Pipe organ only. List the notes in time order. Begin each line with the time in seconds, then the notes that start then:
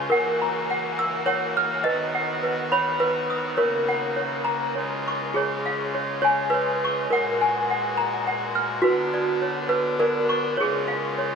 0.11 E3 A#3 F#4
1.86 D#3 B3 F#4
3.59 C#3 A#3
4.76 G#3 F4
7.10 A#2 F#4
8.83 D3 B3 D4
10.57 C#3 G#3 F4